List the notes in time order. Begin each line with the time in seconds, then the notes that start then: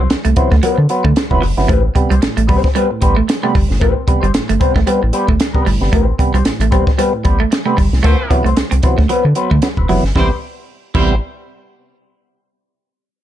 0.01 C4
0.10 C2, muted clean electric guitar stroke, snare, closed hi-hat
0.25 C2 A3, muted clean electric guitar stroke, closed hi-hat
0.36 C3 E3 F#3 B3 C4 F#4 C5, muted clean electric guitar stroke, kick, closed hi-hat
0.51 D2 F#3 A3 B3, muted clean electric guitar stroke, kick, snare
0.63 F#3 B3 C4 F#4 B4, closed hi-hat
0.78 D3, muted clean electric guitar stroke
0.89 F#3 B3 C4 F#4 B4, closed hi-hat
1.04 D3 A3, muted clean electric guitar stroke, kick
1.16 muted clean electric guitar stroke, snare, closed hi-hat
1.31 E1 C3 E3 F#3 B3 C4 F#4 B4, kick
1.42 F#1 F#3, muted clean electric guitar stroke, open hi-hat
1.57 G1 C3 E3 F#3 B3, muted clean electric guitar stroke, snare
1.68 A1 A2 A3 C4 G4 B4, kick, closed hi-hat
1.84 muted clean electric guitar stroke
1.95 C3 G3 B3, muted clean electric guitar stroke, kick, closed hi-hat
2.10 C2 G3 B3 C4 G4 C5, closed hi-hat
2.21 A1 A2, muted clean electric guitar stroke, snare, closed hi-hat
2.36 A1 A3, muted clean electric guitar stroke, closed hi-hat
2.47 C3 G3 B3 C4 G4 C5, kick, open hi-hat
2.63 G3 B3, muted clean electric guitar stroke, kick, snare
2.75 G3 B3 C4 G4 B4, closed hi-hat
2.90 A2, muted clean electric guitar stroke
3.01 A1 G3 B3 C4 G4 B4, muted clean electric guitar stroke, kick, closed hi-hat
3.16 A3, muted clean electric guitar stroke
3.27 muted clean electric guitar stroke, snare, closed hi-hat
3.43 C3 G3 A3 B3 C4 G4 B4
3.54 G1 G3, muted clean electric guitar stroke, kick, open hi-hat
3.69 G1 A2, muted clean electric guitar stroke, snare
3.80 A1 A2 A3 C4 G4 B4, kick, closed hi-hat
3.95 muted clean electric guitar stroke
4.07 C3 G3 B3, muted clean electric guitar stroke, kick, closed hi-hat
4.20 G1 G3 B3 C4 G4 C5, closed hi-hat
4.34 G1 A2, muted clean electric guitar stroke, snare, closed hi-hat
4.48 G1 A3, muted clean electric guitar stroke, closed hi-hat
4.60 C3 G3 B3 C4 G4 C5, muted clean electric guitar stroke, kick, closed hi-hat
4.75 A1 G3 A3 B3, muted clean electric guitar stroke, kick, snare
4.86 G3 B3 C4 G4 B4, closed hi-hat
5.01 A1 A2, muted clean electric guitar stroke
5.13 G3 B3 C4 G4 B4, closed hi-hat
5.27 G1 A3, muted clean electric guitar stroke, kick
5.39 muted clean electric guitar stroke, snare, closed hi-hat
5.53 C3 G3 B3 C4 G4 B4, kick
5.66 G1 A2 G3, muted clean electric guitar stroke, open hi-hat
5.81 G1 C3 G3 B3, muted clean electric guitar stroke, snare
5.92 A1 A2 A3 C4 G4 B4, kick, closed hi-hat
6.07 muted clean electric guitar stroke
6.19 C3 G3 B3, muted clean electric guitar stroke, kick, closed hi-hat
6.34 C2 G3 B3 C4 G4 C5, closed hi-hat
6.45 A1 A2, muted clean electric guitar stroke, snare, closed hi-hat
6.60 A1 A3, muted clean electric guitar stroke, closed hi-hat
6.71 C3 G3 B3 C4 G4 C5, kick, closed hi-hat
6.87 G3 B3, muted clean electric guitar stroke, kick, snare
6.98 G3 B3 C4 G4 B4, closed hi-hat
7.13 A2, muted clean electric guitar stroke
7.24 A1 G3 B3 C4 G4 B4, muted clean electric guitar stroke, kick, closed hi-hat
7.40 A3, muted clean electric guitar stroke
7.52 muted clean electric guitar stroke, snare, closed hi-hat
7.65 C3 G3 A3 B3 C4 G4 B4
7.77 G1 G3, muted clean electric guitar stroke, kick, open hi-hat
7.92 C2 A2, muted clean electric guitar stroke, snare
8.03 D2 A3 C4 F#4 B4 C5, kick, closed hi-hat
8.18 muted clean electric guitar stroke
8.30 C3 E3 F#3 B3, muted clean electric guitar stroke, kick, closed hi-hat
8.44 C2 F#3 A3 B3 C4 F#4 C5, closed hi-hat
8.57 C2, muted clean electric guitar stroke, snare, closed hi-hat
8.71 C2 C4, muted clean electric guitar stroke, closed hi-hat
8.83 C3 E3 F#3 B3 C4 F#4 C5, muted clean electric guitar stroke, kick, closed hi-hat
8.98 D2 F#3 A3 B3, muted clean electric guitar stroke, kick, snare
9.09 F#3 B3 C4 F#4 B4, closed hi-hat
9.25 D3, muted clean electric guitar stroke
9.35 F#3 B3 C4 F#4 B4, closed hi-hat
9.51 D3 A3, muted clean electric guitar stroke, kick
9.62 F#3 B3, muted clean electric guitar stroke, snare, closed hi-hat
9.77 E1 C4 F#4 B4, kick
9.89 F#1 C3 E3 F#3 B3, muted clean electric guitar stroke, open hi-hat
10.03 G1, muted clean electric guitar stroke, snare
10.15 A1 C3 E3 G3 B3 C4 E4 G4 B4 C5, kick, snare
10.94 A1 C3 E3 G3 B3 C4 E4 G4 B4 C5, kick, crash